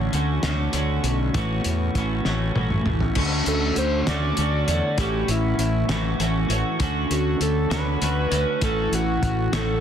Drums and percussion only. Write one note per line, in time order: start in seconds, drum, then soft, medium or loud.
0.13 closed hi-hat soft
0.43 snare medium
0.43 closed hi-hat medium
0.73 closed hi-hat medium
1.04 closed hi-hat soft
1.34 kick medium
1.34 closed hi-hat medium
1.64 closed hi-hat medium
1.95 kick medium
1.95 closed hi-hat medium
2.25 snare soft
2.56 high tom medium
2.70 mid tom medium
2.86 mid tom medium
3.00 floor tom medium
3.15 kick medium
3.15 crash loud
3.46 closed hi-hat medium
3.76 closed hi-hat medium
4.07 snare medium
4.07 closed hi-hat medium
4.37 closed hi-hat medium
4.68 closed hi-hat medium
4.98 kick medium
4.98 closed hi-hat medium
5.28 closed hi-hat medium
5.59 closed hi-hat medium
5.89 snare medium
5.89 closed hi-hat medium
6.20 closed hi-hat medium
6.50 closed hi-hat medium
6.80 kick medium
6.80 closed hi-hat medium
7.11 closed hi-hat medium
7.41 closed hi-hat medium
7.71 snare loud
7.71 closed hi-hat medium
8.02 closed hi-hat medium
8.32 closed hi-hat medium
8.62 kick medium
8.62 closed hi-hat medium
8.93 closed hi-hat medium
9.23 kick medium
9.23 closed hi-hat medium
9.53 snare medium
9.53 closed hi-hat medium